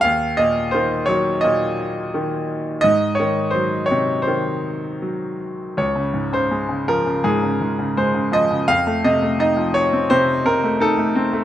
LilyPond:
<<
  \new Staff \with { instrumentName = "Grand piano" } { \time 4/4 \key des \major \tempo 4 = 84 f''8 ees''8 c''8 des''8 ees''4. r8 | ees''8 des''8 c''8 des''8 c''4. r8 | des''8. c''8. bes'8 aes'4 c''8 ees''8 | f''8 ees''8 ees''8 des''8 c''8 bes'8 a'8. r16 | }
  \new Staff \with { instrumentName = "Grand piano" } { \clef bass \time 4/4 \key des \major ees,8 bes,8 ees8 ges8 bes,4 ees4 | aes,8 ees8 ges8 c8 ees4 ges4 | des,16 des16 aes,16 des16 aes16 des16 f16 des16 aes,16 des16 aes,16 des16 aes16 des16 f16 des16 | f,16 a16 c16 a16 ees'16 f8 c'16 c8 c16 a16 ees'16 a16 c'16 a16 | }
>>